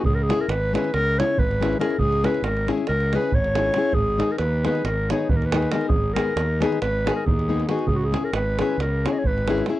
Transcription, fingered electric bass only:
\new Staff \with { instrumentName = "Fingered electric bass" } { \clef bass \time 9/8 \key cis \dorian \tempo 4. = 92 cis,4 gis,,4 cis,4 gis,,4. | cis,4 gis,,4 cis,4 gis,,4. | gis,,4 dis,4 gis,,4 dis,4. | gis,,4 dis,4 gis,,4 dis,4. |
cis,4 gis,,4 cis,4 gis,,4. | }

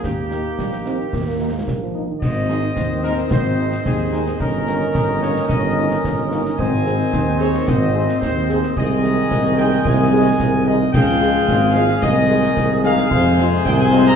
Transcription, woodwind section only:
\new Staff \with { instrumentName = "Woodwind section" } { \time 2/4 \key aes \major \tempo 4 = 110 << { g'2~ | g'4 r4 | ees''2~ | ees''2 |
ees''2~ | ees''2 | ees''2~ | ees''2 |
ees''2~ | ees''2 | f''2 | ees''2 |
c''2 | } \\ { r2 | r2 | c''2~ | c''2 |
bes'2~ | bes'2 | c''2~ | c''2 |
aes'2~ | aes'2 | aes'2~ | aes'2 |
aes'2 | } >> }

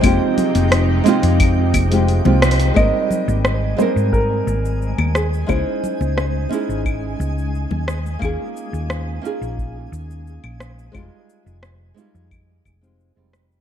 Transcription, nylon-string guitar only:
\new Staff \with { instrumentName = "Nylon-string guitar" } { \time 4/4 \key aes \major \tempo 4 = 88 <aes c' ees' f' g'>4. <aes c' ees' f' g'>4~ <aes c' ees' f' g'>16 <aes c' ees' f' g'>8 <aes c' ees' f' g'>8. | <g aes c' ees' bes'>4. <g aes c' ees' bes'>2~ <g aes c' ees' bes'>8 | <aes des' ees' fes' aes'>4. <aes des' ees' fes' aes'>2 r8 | <bes des' ees' f' aes'>4. <bes des' ees' f' aes'>2~ <bes des' ees' f' aes'>8 |
<g aes c' ees' f'>4. <g aes c' ees' f'>4~ <g aes c' ees' f'>16 <aes c' ees' f' g'>8 <g aes c' ees' f'>8. | }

